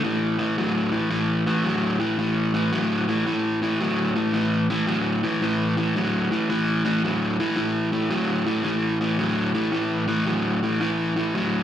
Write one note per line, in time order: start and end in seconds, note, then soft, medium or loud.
0.04 0.36 A2 medium
0.04 0.36 E3 medium
0.39 0.55 A2 medium
0.39 0.56 E3 medium
0.58 0.90 A2 medium
0.58 0.90 F#3 medium
0.92 1.09 A2 medium
0.92 1.09 E3 medium
1.10 1.43 A2 medium
1.10 1.43 E3 medium
1.47 1.63 A2 medium
1.47 1.63 E3 medium
1.64 1.97 A2 medium
1.64 1.97 F#3 medium
2.00 2.17 A2 medium
2.00 2.17 E3 medium
2.19 2.51 A2 medium
2.19 2.51 E3 medium
2.54 2.71 A2 medium
2.54 2.71 E3 medium
2.72 3.05 A2 medium
2.72 3.05 F#3 medium
3.08 3.25 A2 medium
3.08 3.25 E3 medium
3.27 3.59 A2 medium
3.27 3.59 E3 medium
3.62 3.78 A2 medium
3.62 3.79 E3 medium
3.81 4.13 A2 medium
3.81 4.13 F#3 medium
4.16 4.32 A2 medium
4.16 4.32 E3 medium
4.33 4.66 A2 medium
4.33 4.66 E3 medium
4.70 4.86 A2 medium
4.70 4.86 E3 medium
4.87 5.20 A2 medium
4.87 5.20 F#3 medium
5.23 5.40 A2 medium
5.23 5.40 E3 medium
5.42 5.74 A2 medium
5.42 5.74 E3 medium
5.77 5.94 A2 medium
5.77 5.94 E3 medium
5.96 6.28 A2 medium
5.96 6.29 F#3 medium
6.31 6.48 A2 medium
6.31 6.48 E3 medium
6.50 6.82 A2 medium
6.50 6.82 E3 loud
6.85 7.01 A2 medium
6.85 7.02 E3 medium
7.04 7.36 A2 medium
7.04 7.36 F#3 medium
7.40 7.55 A2 medium
7.40 7.56 E3 medium
7.56 7.89 A2 medium
7.56 7.89 E3 medium
7.92 8.09 A2 medium
7.92 8.09 E3 medium
8.11 8.43 A2 medium
8.11 8.43 F#3 loud
8.45 8.63 A2 medium
8.45 8.63 E3 medium
8.64 8.97 A2 medium
8.64 8.97 E3 medium
9.01 9.17 A2 medium
9.01 9.17 E3 medium
9.19 9.51 A2 medium
9.19 9.51 F#3 medium
9.54 9.71 A2 medium
9.54 9.71 E3 medium
9.72 10.05 A2 medium
9.72 10.05 E3 medium
10.08 10.25 A2 medium
10.08 10.25 E3 medium
10.27 10.59 A2 medium
10.27 10.59 F#3 medium
10.63 10.79 A2 medium
10.63 10.79 E3 medium
10.81 11.13 A2 medium
10.81 11.13 E3 loud
11.16 11.33 A2 medium
11.16 11.33 E3 medium
11.35 11.63 A2 medium
11.35 11.63 F#3 medium